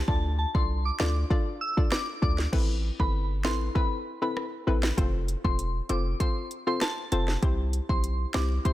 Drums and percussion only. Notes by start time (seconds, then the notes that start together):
0.08 kick
0.55 kick
1.00 cross-stick, snare
1.31 kick
1.78 kick
1.92 cross-stick, snare
2.22 kick
2.38 snare
2.53 kick, crash
3.00 kick
3.45 cross-stick, snare
3.75 kick
4.37 cross-stick
4.83 cross-stick, snare
4.98 kick, closed hi-hat
5.28 closed hi-hat
5.45 kick
5.59 closed hi-hat
5.89 closed hi-hat
6.20 kick, closed hi-hat
6.51 closed hi-hat
6.81 cross-stick, snare, closed hi-hat
7.12 closed hi-hat
7.28 snare
7.43 kick, closed hi-hat
7.73 closed hi-hat
7.89 kick
8.04 closed hi-hat
8.34 cross-stick, snare, closed hi-hat
8.65 kick, closed hi-hat